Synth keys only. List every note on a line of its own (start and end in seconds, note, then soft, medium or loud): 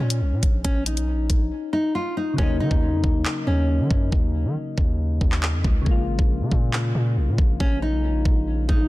2.33 5.80 C#3 medium
2.33 5.81 F#3 medium
2.40 5.83 A#3 medium
2.40 5.84 D#4 medium
5.82 8.88 C#3 medium
5.82 8.88 G#3 medium
5.88 8.88 A#3 medium
5.88 8.88 F4 medium